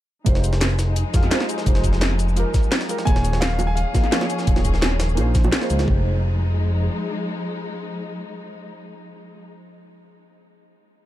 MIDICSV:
0, 0, Header, 1, 6, 480
1, 0, Start_track
1, 0, Key_signature, -4, "minor"
1, 0, Tempo, 350877
1, 361, Time_signature, 4, 2, 24, 8
1, 15127, End_track
2, 0, Start_track
2, 0, Title_t, "Grand piano"
2, 0, Program_c, 0, 0
2, 4178, Note_on_c, 0, 80, 119
2, 4658, Note_on_c, 0, 77, 100
2, 4684, Note_off_c, 0, 80, 0
2, 5020, Note_on_c, 0, 80, 103
2, 5044, Note_off_c, 0, 77, 0
2, 5136, Note_on_c, 0, 77, 94
2, 5153, Note_off_c, 0, 80, 0
2, 7494, Note_off_c, 0, 77, 0
2, 15127, End_track
3, 0, Start_track
3, 0, Title_t, "Synth stab"
3, 0, Program_c, 1, 62
3, 332, Note_on_c, 1, 56, 101
3, 346, Note_on_c, 1, 63, 86
3, 361, Note_on_c, 1, 65, 83
3, 378, Note_on_c, 1, 67, 85
3, 393, Note_on_c, 1, 72, 106
3, 621, Control_c, 1, 64, 127
3, 1519, Note_off_c, 1, 56, 0
3, 1525, Note_off_c, 1, 63, 0
3, 1533, Note_off_c, 1, 65, 0
3, 1541, Note_off_c, 1, 67, 0
3, 1546, Note_on_c, 1, 56, 73
3, 1549, Note_off_c, 1, 72, 0
3, 1555, Note_on_c, 1, 63, 72
3, 1562, Note_on_c, 1, 65, 72
3, 1570, Note_on_c, 1, 67, 70
3, 1579, Note_on_c, 1, 77, 83
3, 1652, Note_off_c, 1, 56, 0
3, 1656, Note_off_c, 1, 63, 0
3, 1660, Note_off_c, 1, 65, 0
3, 1664, Note_off_c, 1, 67, 0
3, 1668, Note_off_c, 1, 77, 0
3, 1787, Note_on_c, 1, 56, 96
3, 1794, Note_on_c, 1, 63, 86
3, 1803, Note_on_c, 1, 65, 89
3, 1811, Note_on_c, 1, 67, 86
3, 1819, Note_on_c, 1, 72, 101
3, 2232, Note_off_c, 1, 56, 0
3, 2249, Note_off_c, 1, 63, 0
3, 2249, Note_on_c, 1, 56, 87
3, 2254, Note_off_c, 1, 65, 0
3, 2258, Note_off_c, 1, 67, 0
3, 2262, Note_off_c, 1, 72, 0
3, 2264, Note_on_c, 1, 63, 75
3, 2280, Note_on_c, 1, 65, 80
3, 2298, Note_on_c, 1, 67, 77
3, 2311, Note_on_c, 1, 72, 94
3, 3197, Note_off_c, 1, 56, 0
3, 3204, Note_off_c, 1, 63, 0
3, 3211, Note_on_c, 1, 56, 93
3, 3213, Note_off_c, 1, 65, 0
3, 3221, Note_off_c, 1, 67, 0
3, 3225, Note_on_c, 1, 63, 87
3, 3228, Note_off_c, 1, 72, 0
3, 3243, Note_on_c, 1, 65, 87
3, 3258, Note_on_c, 1, 67, 82
3, 3274, Note_on_c, 1, 70, 102
3, 3918, Note_off_c, 1, 56, 0
3, 3925, Note_off_c, 1, 63, 0
3, 3934, Note_off_c, 1, 65, 0
3, 3941, Note_off_c, 1, 67, 0
3, 3943, Note_on_c, 1, 56, 78
3, 3949, Note_off_c, 1, 70, 0
3, 3951, Note_on_c, 1, 63, 74
3, 3959, Note_on_c, 1, 65, 74
3, 3966, Note_on_c, 1, 67, 71
3, 3976, Note_on_c, 1, 70, 86
3, 4164, Note_off_c, 1, 56, 0
3, 4168, Note_off_c, 1, 63, 0
3, 4170, Note_on_c, 1, 58, 94
3, 4172, Note_off_c, 1, 65, 0
3, 4175, Note_off_c, 1, 67, 0
3, 4181, Note_off_c, 1, 70, 0
3, 4186, Note_on_c, 1, 63, 87
3, 4201, Note_on_c, 1, 65, 88
3, 4217, Control_c, 1, 64, 0
3, 4217, Note_on_c, 1, 68, 84
3, 4233, Note_on_c, 1, 73, 107
3, 4467, Control_c, 1, 64, 127
3, 5358, Note_off_c, 1, 58, 0
3, 5366, Note_off_c, 1, 63, 0
3, 5373, Note_off_c, 1, 65, 0
3, 5381, Note_off_c, 1, 68, 0
3, 5382, Note_on_c, 1, 58, 75
3, 5389, Note_off_c, 1, 73, 0
3, 5391, Note_on_c, 1, 63, 68
3, 5399, Note_on_c, 1, 65, 69
3, 5407, Note_on_c, 1, 68, 72
3, 5414, Note_on_c, 1, 77, 81
3, 5490, Note_off_c, 1, 58, 0
3, 5494, Note_off_c, 1, 63, 0
3, 5498, Note_off_c, 1, 65, 0
3, 5502, Note_off_c, 1, 68, 0
3, 5506, Note_off_c, 1, 77, 0
3, 5626, Note_on_c, 1, 58, 92
3, 5632, Note_on_c, 1, 63, 89
3, 5640, Note_on_c, 1, 65, 84
3, 5649, Note_on_c, 1, 68, 91
3, 5658, Note_on_c, 1, 73, 100
3, 6073, Note_off_c, 1, 58, 0
3, 6088, Note_off_c, 1, 63, 0
3, 6089, Note_on_c, 1, 58, 85
3, 6093, Note_off_c, 1, 65, 0
3, 6097, Note_off_c, 1, 68, 0
3, 6102, Note_off_c, 1, 73, 0
3, 6106, Note_on_c, 1, 63, 78
3, 6121, Note_on_c, 1, 65, 76
3, 6138, Note_on_c, 1, 68, 75
3, 6151, Note_on_c, 1, 73, 98
3, 7028, Note_off_c, 1, 58, 0
3, 7045, Note_off_c, 1, 63, 0
3, 7045, Note_on_c, 1, 58, 89
3, 7053, Note_off_c, 1, 65, 0
3, 7061, Note_off_c, 1, 68, 0
3, 7061, Note_on_c, 1, 63, 84
3, 7068, Note_off_c, 1, 73, 0
3, 7078, Note_on_c, 1, 65, 81
3, 7093, Note_on_c, 1, 68, 84
3, 7108, Note_on_c, 1, 72, 100
3, 7642, Note_off_c, 1, 58, 0
3, 7650, Note_off_c, 1, 63, 0
3, 7658, Note_off_c, 1, 65, 0
3, 7665, Note_off_c, 1, 68, 0
3, 7672, Note_on_c, 1, 58, 79
3, 7673, Note_off_c, 1, 72, 0
3, 7678, Note_on_c, 1, 63, 76
3, 7685, Note_on_c, 1, 65, 74
3, 7694, Note_on_c, 1, 68, 75
3, 7702, Note_on_c, 1, 72, 91
3, 7997, Note_on_c, 1, 56, 92
3, 8003, Note_off_c, 1, 63, 0
3, 8007, Note_off_c, 1, 58, 0
3, 8013, Note_off_c, 1, 65, 0
3, 8018, Note_off_c, 1, 68, 0
3, 8019, Note_on_c, 1, 63, 83
3, 8022, Note_off_c, 1, 72, 0
3, 8042, Note_on_c, 1, 65, 80
3, 8056, Control_c, 1, 64, 0
3, 8066, Note_on_c, 1, 67, 81
3, 8088, Note_on_c, 1, 72, 102
3, 8275, Control_c, 1, 64, 127
3, 13316, Note_off_c, 1, 56, 0
3, 13339, Note_off_c, 1, 63, 0
3, 13362, Note_off_c, 1, 65, 0
3, 13385, Note_off_c, 1, 67, 0
3, 13408, Note_off_c, 1, 72, 0
3, 15127, End_track
4, 0, Start_track
4, 0, Title_t, "String section"
4, 0, Program_c, 2, 48
4, 360, Note_on_c, 2, 53, 85
4, 360, Note_on_c, 2, 63, 82
4, 363, Note_on_c, 2, 56, 94
4, 4162, Note_off_c, 2, 63, 0
4, 4164, Note_off_c, 2, 56, 0
4, 4199, Note_on_c, 2, 68, 99
4, 4201, Note_on_c, 2, 61, 79
4, 7986, Note_off_c, 2, 53, 0
4, 8001, Note_off_c, 2, 68, 0
4, 8003, Note_off_c, 2, 61, 0
4, 8042, Note_on_c, 2, 63, 82
4, 8043, Note_on_c, 2, 53, 86
4, 8044, Note_on_c, 2, 56, 96
4, 12921, Note_off_c, 2, 63, 0
4, 12922, Note_off_c, 2, 53, 0
4, 12922, Note_off_c, 2, 56, 0
4, 15127, End_track
5, 0, Start_track
5, 0, Title_t, "Analog synth bass"
5, 0, Program_c, 3, 38
5, 360, Note_on_c, 3, 29, 99
5, 1424, Note_off_c, 3, 29, 0
5, 1559, Note_on_c, 3, 29, 88
5, 1777, Note_off_c, 3, 29, 0
5, 2280, Note_on_c, 3, 29, 101
5, 3344, Note_off_c, 3, 29, 0
5, 4199, Note_on_c, 3, 27, 100
5, 5264, Note_off_c, 3, 27, 0
5, 6120, Note_on_c, 3, 27, 94
5, 7081, Note_on_c, 3, 34, 83
5, 7101, Note_off_c, 3, 27, 0
5, 7542, Note_off_c, 3, 34, 0
5, 7803, Note_on_c, 3, 37, 84
5, 8019, Note_off_c, 3, 37, 0
5, 8042, Note_on_c, 3, 29, 97
5, 9427, Note_off_c, 3, 29, 0
5, 15127, End_track
6, 0, Start_track
6, 0, Title_t, "Drums"
6, 356, Note_on_c, 9, 42, 88
6, 357, Note_off_c, 9, 42, 0
6, 357, Note_on_c, 9, 42, 98
6, 361, Note_on_c, 9, 36, 118
6, 482, Note_on_c, 9, 38, 49
6, 494, Note_off_c, 9, 42, 0
6, 498, Note_off_c, 9, 36, 0
6, 600, Note_on_c, 9, 42, 70
6, 600, Note_on_c, 9, 82, 60
6, 618, Note_off_c, 9, 38, 0
6, 721, Note_on_c, 9, 38, 53
6, 737, Note_off_c, 9, 42, 0
6, 737, Note_off_c, 9, 82, 0
6, 836, Note_off_c, 9, 38, 0
6, 836, Note_on_c, 9, 38, 116
6, 836, Note_on_c, 9, 42, 89
6, 841, Note_off_c, 9, 38, 0
6, 841, Note_off_c, 9, 42, 0
6, 841, Note_on_c, 9, 38, 118
6, 841, Note_on_c, 9, 42, 102
6, 960, Note_off_c, 9, 42, 0
6, 960, Note_on_c, 9, 42, 43
6, 978, Note_off_c, 9, 38, 0
6, 1076, Note_off_c, 9, 42, 0
6, 1076, Note_on_c, 9, 38, 58
6, 1076, Note_on_c, 9, 42, 71
6, 1081, Note_off_c, 9, 42, 0
6, 1081, Note_on_c, 9, 42, 73
6, 1081, Note_on_c, 9, 82, 59
6, 1213, Note_off_c, 9, 38, 0
6, 1218, Note_off_c, 9, 42, 0
6, 1218, Note_off_c, 9, 82, 0
6, 1315, Note_on_c, 9, 42, 87
6, 1319, Note_off_c, 9, 42, 0
6, 1319, Note_on_c, 9, 42, 102
6, 1455, Note_off_c, 9, 42, 0
6, 1556, Note_on_c, 9, 38, 38
6, 1556, Note_on_c, 9, 42, 69
6, 1560, Note_on_c, 9, 36, 112
6, 1561, Note_off_c, 9, 42, 0
6, 1561, Note_on_c, 9, 42, 69
6, 1561, Note_on_c, 9, 82, 61
6, 1678, Note_off_c, 9, 42, 0
6, 1678, Note_on_c, 9, 42, 45
6, 1685, Note_on_c, 9, 40, 35
6, 1692, Note_off_c, 9, 38, 0
6, 1697, Note_off_c, 9, 36, 0
6, 1698, Note_off_c, 9, 82, 0
6, 1795, Note_off_c, 9, 42, 0
6, 1795, Note_on_c, 9, 38, 121
6, 1795, Note_on_c, 9, 42, 91
6, 1800, Note_off_c, 9, 38, 0
6, 1800, Note_off_c, 9, 42, 0
6, 1800, Note_on_c, 9, 38, 123
6, 1800, Note_on_c, 9, 42, 97
6, 1822, Note_off_c, 9, 40, 0
6, 1921, Note_off_c, 9, 38, 0
6, 1921, Note_on_c, 9, 38, 60
6, 1923, Note_on_c, 9, 40, 59
6, 1937, Note_off_c, 9, 42, 0
6, 2036, Note_on_c, 9, 42, 65
6, 2044, Note_off_c, 9, 42, 0
6, 2044, Note_on_c, 9, 42, 71
6, 2044, Note_on_c, 9, 82, 62
6, 2057, Note_off_c, 9, 38, 0
6, 2060, Note_off_c, 9, 40, 0
6, 2159, Note_on_c, 9, 38, 38
6, 2167, Note_off_c, 9, 82, 0
6, 2167, Note_on_c, 9, 82, 28
6, 2180, Note_off_c, 9, 42, 0
6, 2275, Note_on_c, 9, 42, 89
6, 2279, Note_on_c, 9, 36, 127
6, 2283, Note_off_c, 9, 42, 0
6, 2283, Note_on_c, 9, 42, 97
6, 2296, Note_off_c, 9, 38, 0
6, 2303, Note_off_c, 9, 82, 0
6, 2395, Note_on_c, 9, 38, 59
6, 2416, Note_off_c, 9, 36, 0
6, 2420, Note_off_c, 9, 42, 0
6, 2512, Note_on_c, 9, 42, 69
6, 2519, Note_on_c, 9, 36, 64
6, 2523, Note_off_c, 9, 42, 0
6, 2523, Note_on_c, 9, 42, 68
6, 2523, Note_on_c, 9, 82, 55
6, 2532, Note_off_c, 9, 38, 0
6, 2637, Note_on_c, 9, 38, 39
6, 2656, Note_off_c, 9, 36, 0
6, 2660, Note_off_c, 9, 42, 0
6, 2660, Note_off_c, 9, 82, 0
6, 2753, Note_off_c, 9, 38, 0
6, 2753, Note_on_c, 9, 38, 122
6, 2753, Note_on_c, 9, 42, 92
6, 2762, Note_off_c, 9, 38, 0
6, 2762, Note_off_c, 9, 42, 0
6, 2762, Note_on_c, 9, 38, 127
6, 2762, Note_on_c, 9, 42, 95
6, 2884, Note_on_c, 9, 40, 36
6, 2899, Note_off_c, 9, 38, 0
6, 2899, Note_off_c, 9, 42, 0
6, 2996, Note_on_c, 9, 42, 70
6, 3003, Note_off_c, 9, 42, 0
6, 3003, Note_on_c, 9, 42, 70
6, 3003, Note_on_c, 9, 82, 61
6, 3021, Note_off_c, 9, 40, 0
6, 3126, Note_off_c, 9, 82, 0
6, 3126, Note_on_c, 9, 82, 27
6, 3140, Note_off_c, 9, 42, 0
6, 3235, Note_on_c, 9, 42, 88
6, 3239, Note_off_c, 9, 42, 0
6, 3239, Note_on_c, 9, 42, 96
6, 3263, Note_off_c, 9, 82, 0
6, 3376, Note_off_c, 9, 42, 0
6, 3478, Note_on_c, 9, 38, 39
6, 3478, Note_on_c, 9, 42, 67
6, 3478, Note_on_c, 9, 82, 55
6, 3479, Note_on_c, 9, 36, 113
6, 3602, Note_off_c, 9, 82, 0
6, 3602, Note_on_c, 9, 82, 26
6, 3615, Note_off_c, 9, 38, 0
6, 3615, Note_off_c, 9, 42, 0
6, 3616, Note_off_c, 9, 36, 0
6, 3716, Note_on_c, 9, 38, 124
6, 3716, Note_on_c, 9, 42, 93
6, 3718, Note_off_c, 9, 38, 0
6, 3718, Note_off_c, 9, 42, 0
6, 3718, Note_on_c, 9, 38, 124
6, 3718, Note_on_c, 9, 42, 91
6, 3738, Note_off_c, 9, 82, 0
6, 3841, Note_off_c, 9, 38, 0
6, 3841, Note_on_c, 9, 38, 59
6, 3855, Note_off_c, 9, 42, 0
6, 3958, Note_on_c, 9, 42, 70
6, 3959, Note_off_c, 9, 42, 0
6, 3959, Note_on_c, 9, 42, 71
6, 3959, Note_on_c, 9, 82, 58
6, 3978, Note_off_c, 9, 38, 0
6, 4084, Note_off_c, 9, 82, 0
6, 4084, Note_on_c, 9, 38, 50
6, 4084, Note_on_c, 9, 82, 28
6, 4096, Note_off_c, 9, 42, 0
6, 4199, Note_on_c, 9, 42, 84
6, 4200, Note_off_c, 9, 42, 0
6, 4200, Note_on_c, 9, 36, 127
6, 4200, Note_on_c, 9, 42, 93
6, 4220, Note_off_c, 9, 38, 0
6, 4221, Note_off_c, 9, 82, 0
6, 4323, Note_on_c, 9, 38, 51
6, 4337, Note_off_c, 9, 36, 0
6, 4337, Note_off_c, 9, 42, 0
6, 4439, Note_on_c, 9, 42, 68
6, 4441, Note_off_c, 9, 42, 0
6, 4441, Note_on_c, 9, 42, 62
6, 4441, Note_on_c, 9, 82, 57
6, 4460, Note_off_c, 9, 38, 0
6, 4559, Note_on_c, 9, 38, 56
6, 4563, Note_on_c, 9, 60, 57
6, 4578, Note_off_c, 9, 42, 0
6, 4578, Note_off_c, 9, 82, 0
6, 4675, Note_off_c, 9, 38, 0
6, 4675, Note_on_c, 9, 38, 121
6, 4675, Note_on_c, 9, 42, 95
6, 4679, Note_off_c, 9, 38, 0
6, 4679, Note_off_c, 9, 42, 0
6, 4679, Note_on_c, 9, 38, 127
6, 4679, Note_on_c, 9, 42, 90
6, 4700, Note_off_c, 9, 60, 0
6, 4798, Note_off_c, 9, 42, 0
6, 4798, Note_on_c, 9, 42, 43
6, 4816, Note_off_c, 9, 38, 0
6, 4907, Note_on_c, 9, 60, 85
6, 4915, Note_off_c, 9, 42, 0
6, 4915, Note_on_c, 9, 42, 72
6, 4921, Note_off_c, 9, 42, 0
6, 4921, Note_on_c, 9, 42, 69
6, 4921, Note_on_c, 9, 82, 58
6, 5044, Note_off_c, 9, 60, 0
6, 5058, Note_off_c, 9, 42, 0
6, 5058, Note_off_c, 9, 82, 0
6, 5155, Note_on_c, 9, 42, 88
6, 5161, Note_off_c, 9, 42, 0
6, 5161, Note_on_c, 9, 42, 90
6, 5298, Note_off_c, 9, 42, 0
6, 5397, Note_on_c, 9, 38, 41
6, 5397, Note_on_c, 9, 42, 70
6, 5401, Note_off_c, 9, 42, 0
6, 5401, Note_on_c, 9, 36, 120
6, 5401, Note_on_c, 9, 42, 63
6, 5401, Note_on_c, 9, 82, 56
6, 5402, Note_on_c, 9, 60, 54
6, 5521, Note_off_c, 9, 42, 0
6, 5521, Note_on_c, 9, 42, 46
6, 5522, Note_on_c, 9, 40, 33
6, 5534, Note_off_c, 9, 38, 0
6, 5538, Note_off_c, 9, 36, 0
6, 5538, Note_off_c, 9, 82, 0
6, 5539, Note_off_c, 9, 60, 0
6, 5639, Note_off_c, 9, 42, 0
6, 5639, Note_on_c, 9, 38, 127
6, 5639, Note_on_c, 9, 42, 89
6, 5640, Note_off_c, 9, 38, 0
6, 5640, Note_off_c, 9, 42, 0
6, 5640, Note_on_c, 9, 38, 119
6, 5640, Note_on_c, 9, 42, 90
6, 5659, Note_off_c, 9, 40, 0
6, 5761, Note_on_c, 9, 60, 91
6, 5762, Note_off_c, 9, 38, 0
6, 5762, Note_on_c, 9, 38, 59
6, 5764, Note_on_c, 9, 40, 61
6, 5777, Note_off_c, 9, 42, 0
6, 5878, Note_on_c, 9, 42, 67
6, 5880, Note_off_c, 9, 42, 0
6, 5880, Note_on_c, 9, 42, 68
6, 5880, Note_on_c, 9, 82, 57
6, 5898, Note_off_c, 9, 60, 0
6, 5899, Note_off_c, 9, 38, 0
6, 5901, Note_off_c, 9, 40, 0
6, 6001, Note_on_c, 9, 38, 38
6, 6003, Note_off_c, 9, 82, 0
6, 6003, Note_on_c, 9, 82, 27
6, 6017, Note_off_c, 9, 42, 0
6, 6116, Note_on_c, 9, 42, 90
6, 6119, Note_off_c, 9, 42, 0
6, 6119, Note_on_c, 9, 42, 90
6, 6121, Note_on_c, 9, 36, 120
6, 6138, Note_off_c, 9, 38, 0
6, 6139, Note_off_c, 9, 82, 0
6, 6241, Note_on_c, 9, 38, 60
6, 6242, Note_on_c, 9, 60, 59
6, 6256, Note_off_c, 9, 42, 0
6, 6258, Note_off_c, 9, 36, 0
6, 6358, Note_on_c, 9, 42, 66
6, 6358, Note_on_c, 9, 82, 60
6, 6361, Note_on_c, 9, 36, 66
6, 6377, Note_off_c, 9, 38, 0
6, 6379, Note_off_c, 9, 60, 0
6, 6481, Note_on_c, 9, 38, 38
6, 6495, Note_off_c, 9, 42, 0
6, 6495, Note_off_c, 9, 82, 0
6, 6498, Note_off_c, 9, 36, 0
6, 6596, Note_off_c, 9, 38, 0
6, 6596, Note_on_c, 9, 38, 119
6, 6596, Note_on_c, 9, 42, 95
6, 6599, Note_off_c, 9, 38, 0
6, 6599, Note_off_c, 9, 42, 0
6, 6599, Note_on_c, 9, 38, 126
6, 6599, Note_on_c, 9, 42, 87
6, 6606, Note_on_c, 9, 60, 81
6, 6722, Note_on_c, 9, 40, 35
6, 6735, Note_off_c, 9, 38, 0
6, 6735, Note_off_c, 9, 42, 0
6, 6743, Note_off_c, 9, 60, 0
6, 6835, Note_on_c, 9, 38, 111
6, 6835, Note_on_c, 9, 42, 83
6, 6839, Note_off_c, 9, 42, 0
6, 6839, Note_on_c, 9, 42, 69
6, 6839, Note_on_c, 9, 82, 58
6, 6858, Note_off_c, 9, 40, 0
6, 6963, Note_off_c, 9, 82, 0
6, 6963, Note_on_c, 9, 82, 28
6, 6972, Note_off_c, 9, 38, 0
6, 6976, Note_off_c, 9, 42, 0
6, 7075, Note_on_c, 9, 42, 87
6, 7077, Note_off_c, 9, 42, 0
6, 7077, Note_on_c, 9, 42, 92
6, 7080, Note_on_c, 9, 60, 55
6, 7100, Note_off_c, 9, 82, 0
6, 7214, Note_off_c, 9, 42, 0
6, 7216, Note_off_c, 9, 60, 0
6, 7316, Note_on_c, 9, 38, 39
6, 7316, Note_on_c, 9, 42, 69
6, 7317, Note_off_c, 9, 42, 0
6, 7317, Note_on_c, 9, 42, 63
6, 7317, Note_on_c, 9, 82, 60
6, 7321, Note_on_c, 9, 36, 109
6, 7438, Note_off_c, 9, 82, 0
6, 7438, Note_on_c, 9, 82, 27
6, 7449, Note_on_c, 9, 60, 78
6, 7453, Note_off_c, 9, 38, 0
6, 7454, Note_off_c, 9, 42, 0
6, 7458, Note_off_c, 9, 36, 0
6, 7558, Note_on_c, 9, 38, 118
6, 7558, Note_on_c, 9, 42, 92
6, 7575, Note_off_c, 9, 82, 0
6, 7585, Note_off_c, 9, 60, 0
6, 7682, Note_off_c, 9, 38, 0
6, 7682, Note_on_c, 9, 38, 57
6, 7695, Note_off_c, 9, 42, 0
6, 7799, Note_on_c, 9, 42, 67
6, 7799, Note_on_c, 9, 82, 60
6, 7818, Note_off_c, 9, 38, 0
6, 7923, Note_off_c, 9, 82, 0
6, 7923, Note_on_c, 9, 38, 51
6, 7923, Note_on_c, 9, 82, 27
6, 7930, Note_on_c, 9, 60, 57
6, 7936, Note_off_c, 9, 42, 0
6, 8041, Note_on_c, 9, 36, 111
6, 8060, Note_off_c, 9, 38, 0
6, 8060, Note_off_c, 9, 82, 0
6, 8067, Note_off_c, 9, 60, 0
6, 8178, Note_off_c, 9, 36, 0
6, 15127, End_track
0, 0, End_of_file